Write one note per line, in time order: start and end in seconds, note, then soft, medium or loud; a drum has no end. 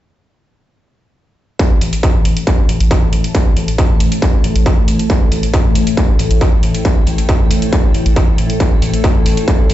1.59 9.74 A2 medium
1.59 9.74 A3 medium
1.59 9.74 E4 loud
1.59 kick loud
1.59 closed hi-hat medium
1.71 1.81 A1 medium
1.81 1.93 A1 loud
1.81 9.74 A4 medium
1.81 5.34 A5 medium
1.81 closed hi-hat medium
1.93 closed hi-hat medium
2.03 kick loud
2.03 closed hi-hat medium
2.15 2.24 A1 medium
2.23 2.36 A1 medium
2.23 9.74 C5 medium
2.23 closed hi-hat medium
2.37 closed hi-hat medium
2.47 kick loud
2.47 closed hi-hat medium
2.58 2.68 A1 medium
2.69 2.80 A1 loud
2.69 closed hi-hat medium
2.80 2.91 A1 medium
2.80 closed hi-hat medium
2.91 kick loud
2.91 closed hi-hat medium
3.02 3.12 A1 medium
3.13 3.24 A1 loud
3.13 closed hi-hat medium
3.24 closed hi-hat medium
3.35 kick loud
3.35 closed hi-hat medium
3.46 3.56 A1 medium
3.56 3.68 A1 loud
3.56 closed hi-hat medium
3.68 closed hi-hat medium
3.78 kick loud
3.78 closed hi-hat medium
3.90 4.00 A1 medium
4.00 4.12 A1 medium
4.00 closed hi-hat medium
4.12 closed hi-hat medium
4.22 kick loud
4.22 closed hi-hat medium
4.34 4.43 A1 medium
4.44 4.55 A1 loud
4.44 closed hi-hat medium
4.56 4.66 A1 medium
4.56 closed hi-hat medium
4.66 kick loud
4.66 closed hi-hat medium
4.78 4.87 A1 medium
4.88 4.99 A1 loud
4.88 closed hi-hat medium
4.99 closed hi-hat medium
5.10 kick loud
5.10 closed hi-hat medium
5.21 5.31 A1 medium
5.32 5.43 A1 loud
5.32 8.84 G5 medium
5.32 closed hi-hat medium
5.43 closed hi-hat medium
5.54 kick loud
5.54 closed hi-hat medium
5.65 5.75 A1 medium
5.75 5.87 A1 medium
5.75 closed hi-hat medium
5.87 closed hi-hat medium
5.97 kick loud
5.97 closed hi-hat medium
6.09 6.19 A1 medium
6.19 6.30 A1 loud
6.19 closed hi-hat medium
6.31 6.41 A1 medium
6.31 closed hi-hat medium
6.41 kick loud
6.41 closed hi-hat medium
6.53 6.62 A1 medium
6.63 6.74 A1 loud
6.63 closed hi-hat medium
6.75 closed hi-hat medium
6.85 kick loud
6.85 closed hi-hat medium
6.96 7.06 A1 medium
7.07 7.18 A1 loud
7.07 closed hi-hat medium
7.18 closed hi-hat medium
7.29 kick loud
7.29 closed hi-hat medium
7.40 7.50 A1 medium
7.51 7.62 A1 loud
7.51 closed hi-hat medium
7.62 closed hi-hat medium
7.73 kick loud
7.73 closed hi-hat medium
7.84 7.94 A1 medium
7.94 8.05 A1 loud
7.94 closed hi-hat medium
8.06 8.16 A1 medium
8.06 closed hi-hat medium
8.16 kick loud
8.16 closed hi-hat medium
8.28 8.38 A1 medium
8.38 8.50 A1 loud
8.38 closed hi-hat medium
8.50 closed hi-hat medium
8.60 kick loud
8.60 closed hi-hat medium
8.72 8.81 A1 medium
8.82 8.93 A1 loud
8.82 9.74 A5 medium
8.82 open hi-hat loud
8.94 closed hi-hat medium
9.04 kick loud
9.04 closed hi-hat medium
9.15 9.25 A1 medium
9.26 9.37 A1 medium
9.26 open hi-hat loud
9.37 closed hi-hat medium
9.48 kick loud
9.48 closed hi-hat medium
9.59 9.69 A1 medium
9.70 9.74 A1 loud
9.70 open hi-hat loud